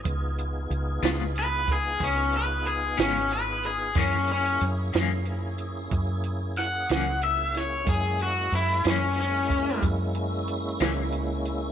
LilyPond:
<<
  \new Staff \with { instrumentName = "Overdriven electric guitar" } { \time 12/8 \key ges \major \tempo 4. = 61 r2 ces''8 aes'8 des'8 ces''8 aes'8 des'8 ces''8 aes'8 | des'8 des'8 r2. ges''4 fes''8 des''8 | aes'8 ges'8 fes'8 des'8 des'4 r2. | }
  \new Staff \with { instrumentName = "Tonewheel organ" } { \time 12/8 \key ges \major <ces' ees' f' aes'>1. | <bes des' fes' aes'>1. | <aes bes des' fes'>1. | }
  \new Staff \with { instrumentName = "Clean electric guitar" } { \time 12/8 \key ges \major r4. <des aes ces' f'>8 r2 r8 <des aes ces' f'>8 r4 | <ges, fes bes des'>8 r4 <ges, fes bes des'>8 r2 r8 <ges, fes bes des'>8 r4 | r4. <ges, fes bes des'>8 r2 r8 <ges, fes bes des'>8 r4 | }
  \new Staff \with { instrumentName = "Fingered electric bass" } { \clef bass \time 12/8 \key ges \major des,4 des,8 des,4. des,4. aes,,4. | ges,4 ges,8 ges,4. ges,4. des,4. | ges,4 ges,8 ges,4. ges,4. des,4. | }
  \new DrumStaff \with { instrumentName = "Drums" } \drummode { \time 12/8 <hh bd>8 hh8 hh8 <hh sn>8 hh8 <hh bd>8 <hh bd>8 hh8 hh8 <hh sn>8 hh8 hh8 | <hh bd>8 hh8 hh8 <hh sn>8 hh8 hh8 <hh bd>8 hh8 <hh sn>8 <hh sn>8 hh8 <hh sn>8 | <hh bd>8 hh8 hh8 <hh sn>8 hh8 <hh bd>8 <hh bd>8 hh8 hh8 <hh sn>8 hh8 hh8 | }
>>